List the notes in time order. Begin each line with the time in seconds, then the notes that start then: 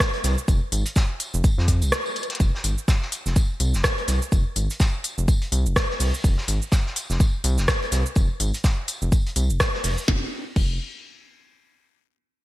0.00 kick, cross-stick, snare, tambourine, shaker
0.13 closed hi-hat
0.24 C2, snare, open hi-hat, tambourine, shaker
0.38 shaker
0.48 F1, kick, tambourine, shaker
0.72 G#1, open hi-hat, tambourine
0.85 closed hi-hat, shaker
0.96 kick, snare, tambourine, shaker
1.20 open hi-hat, tambourine, shaker
1.34 F1, shaker
1.44 kick, tambourine, shaker
1.58 F2, snare
1.68 kick, open hi-hat, tambourine, shaker
1.82 C2, tambourine, shaker
1.92 cross-stick, snare, shaker
2.06 tambourine
2.16 closed hi-hat, tambourine
2.23 closed hi-hat
2.30 snare, closed hi-hat
2.35 closed hi-hat
2.40 F1, kick, tambourine, shaker
2.55 snare
2.64 G#1, open hi-hat, tambourine
2.78 shaker
2.88 kick, snare, tambourine, shaker
3.02 snare
3.12 open hi-hat, tambourine, shaker
3.26 F1, snare, shaker
3.36 kick, tambourine, shaker
3.60 C2, open hi-hat, tambourine
3.74 F1, snare, shaker
3.84 kick, cross-stick, snare, tambourine, shaker
3.98 closed hi-hat
4.08 C2, snare, open hi-hat, tambourine, shaker
4.22 shaker
4.32 F1, kick, tambourine, shaker
4.56 G#1, open hi-hat, tambourine
4.70 closed hi-hat, shaker
4.80 kick, snare, tambourine, shaker
5.04 open hi-hat, tambourine, shaker
5.18 F1, shaker
5.28 kick, tambourine, shaker
5.41 closed hi-hat
5.52 C2, open hi-hat, tambourine
5.66 F1, shaker
5.76 kick, cross-stick, snare, tambourine, shaker
5.90 snare
6.00 C2, open hi-hat, shaker
6.14 shaker
6.24 F1, kick, tambourine, shaker
6.38 snare
6.48 G#1, open hi-hat, tambourine
6.62 shaker
6.72 kick, snare, tambourine, shaker
6.87 snare
6.96 open hi-hat, tambourine, shaker
7.10 F1, snare, shaker
7.20 kick, tambourine, shaker
7.44 C2, open hi-hat, tambourine
7.58 F1, snare, shaker
7.68 kick, cross-stick, snare, tambourine, shaker
7.82 closed hi-hat
7.92 C2, snare, open hi-hat, tambourine, shaker
8.06 shaker
8.15 F1, kick, tambourine, shaker
8.40 G#1, open hi-hat, tambourine
8.54 closed hi-hat, shaker
8.64 kick, snare, tambourine, shaker
8.88 open hi-hat, tambourine, shaker
9.02 F1, shaker
9.12 kick, tambourine, shaker
9.26 closed hi-hat
9.36 C2, open hi-hat, tambourine, shaker
9.50 F1, shaker
9.60 kick, cross-stick, snare, tambourine, shaker
9.74 snare
9.84 F1, open hi-hat, shaker
9.98 shaker
10.08 F1, kick, snare
10.56 F1, kick, crash